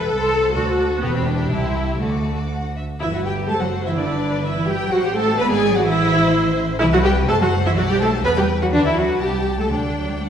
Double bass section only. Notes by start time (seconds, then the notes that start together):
0.08 C2
0.55 D2
1.03 E1
1.51 C2
2.01 D2
3.01 G1
3.49 F#1
3.97 G1
4.91 A1
5.38 G#1
5.86 A1
6.81 C2
7.28 F#1
7.76 B1
8.24 E2
8.73 D2
9.22 C2
9.72 D2